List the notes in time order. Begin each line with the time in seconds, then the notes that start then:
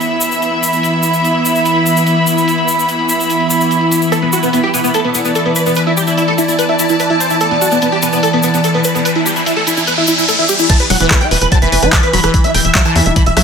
Already playing: E3 B3 E4 E5 B5, downlifter
0.01 closed hi-hat, shaker
0.11 closed hi-hat
0.21 closed hi-hat, shaker
0.32 closed hi-hat, shaker
0.42 closed hi-hat, shaker
0.52 closed hi-hat
0.63 closed hi-hat, shaker
0.73 closed hi-hat, shaker
0.83 closed hi-hat, shaker
0.94 closed hi-hat
1.03 closed hi-hat, shaker
1.14 closed hi-hat, shaker
1.24 closed hi-hat, shaker
1.35 closed hi-hat
1.45 closed hi-hat, shaker
1.55 closed hi-hat, shaker
1.65 closed hi-hat, shaker
1.76 closed hi-hat
1.86 closed hi-hat, shaker
1.96 closed hi-hat, shaker
2.07 closed hi-hat, shaker
2.17 closed hi-hat
2.27 closed hi-hat, shaker
2.37 closed hi-hat, shaker
2.48 closed hi-hat, shaker
2.58 closed hi-hat
2.68 closed hi-hat, shaker
2.78 closed hi-hat, shaker
2.88 closed hi-hat, shaker
2.99 closed hi-hat
3.09 closed hi-hat, shaker
3.20 closed hi-hat, shaker
3.30 closed hi-hat, shaker
3.40 closed hi-hat
3.50 closed hi-hat, shaker
3.61 closed hi-hat, shaker
3.71 closed hi-hat, shaker
3.81 closed hi-hat
3.91 closed hi-hat, shaker
4.02 closed hi-hat, shaker
4.12 A4, closed hi-hat, shaker
4.22 B3, closed hi-hat
4.33 F#4, closed hi-hat, shaker
4.43 B3, closed hi-hat, shaker
4.53 B3, closed hi-hat, shaker
4.63 G4, closed hi-hat
4.74 B3, closed hi-hat, shaker
4.84 B3, closed hi-hat, shaker
4.92 A4 A5, closed hi-hat, shaker
5.04 B3, closed hi-hat
5.13 B3 D5, closed hi-hat, shaker
5.25 B3, closed hi-hat, shaker
5.35 A4, closed hi-hat, shaker
5.46 B3, closed hi-hat
5.56 B4, closed hi-hat, shaker
5.66 B3, closed hi-hat, shaker
5.75 B4, closed hi-hat, shaker
5.87 E4, closed hi-hat
5.97 G4, closed hi-hat, shaker
6.07 E4, closed hi-hat, shaker
6.17 E4, closed hi-hat, shaker
6.28 A4, closed hi-hat
6.38 E4, closed hi-hat, shaker
6.48 E4, closed hi-hat, shaker
6.59 B4, closed hi-hat, shaker
6.69 E4, closed hi-hat
6.79 E4, closed hi-hat, shaker
6.89 E4, closed hi-hat, shaker
7.00 B4, closed hi-hat, shaker
7.10 E4, closed hi-hat
7.20 C5, closed hi-hat, shaker
7.30 E4, closed hi-hat, shaker
7.40 A4, closed hi-hat, riser, shaker
7.51 B3, closed hi-hat
7.61 F#4, closed hi-hat, shaker
7.71 B3, closed hi-hat, shaker
7.82 B3, closed hi-hat, shaker
7.92 G4, closed hi-hat
8.02 B3, closed hi-hat, shaker
8.13 B3, closed hi-hat, shaker
8.23 A4, closed hi-hat, shaker
8.33 B3, closed hi-hat
8.43 B3, closed hi-hat, shaker
8.54 B3, closed hi-hat, shaker
8.64 A4, closed hi-hat, shaker
8.74 B3, closed hi-hat
8.84 B4, closed hi-hat, shaker
8.95 B3, closed hi-hat, shaker
9.05 B4, closed hi-hat, shaker
9.15 E4, closed hi-hat
9.26 G4, closed hi-hat, shaker
9.36 E4, closed hi-hat, shaker
9.46 E4, closed hi-hat, shaker
9.57 A4, closed hi-hat
9.67 E4, closed hi-hat, shaker
9.77 E4, closed hi-hat, shaker
9.87 B4, closed hi-hat, shaker
9.98 E4, closed hi-hat
10.07 E4, closed hi-hat, shaker
10.18 E4, closed hi-hat, shaker
10.28 A4, closed hi-hat, shaker
10.39 E4, closed hi-hat
10.49 G4, closed hi-hat, shaker
10.59 E4, closed hi-hat, shaker
10.70 E3 A5, kick, cross-stick, closed hi-hat, crash
10.80 B4, closed hi-hat
10.90 E1 F#3 F#5, open hi-hat
11.00 E1 E3 B4, closed hi-hat
11.11 B4, kick, cross-stick, clap, closed hi-hat
11.21 E4 G5, closed hi-hat
11.31 E1 E3 B4, open hi-hat
11.41 E1 B4, cross-stick, closed hi-hat
11.52 F#3 A5, kick, closed hi-hat
11.62 F#1 E3 B4, closed hi-hat
11.72 F#1 B4, open hi-hat
11.83 F#1 E4 B4, cross-stick, closed hi-hat
11.93 E3 A5, kick, clap, closed hi-hat
12.03 B4, closed hi-hat
12.13 E1 F#3 B5, open hi-hat
12.24 E1 E3 B4, cross-stick, closed hi-hat
12.34 B5, kick, closed hi-hat
12.44 E4 E5, closed hi-hat
12.54 E1 E3 G5, cross-stick, open hi-hat
12.65 E1 E5, closed hi-hat
12.75 F#3 E5, kick, clap, closed hi-hat
12.85 E3 A5, closed hi-hat
12.96 E2 E5, cross-stick, open hi-hat
13.06 E1 E4 E5, closed hi-hat
13.16 E3 B5, kick, closed hi-hat
13.26 E1 E5, closed hi-hat
13.37 B1 F#3 E5, cross-stick, open hi-hat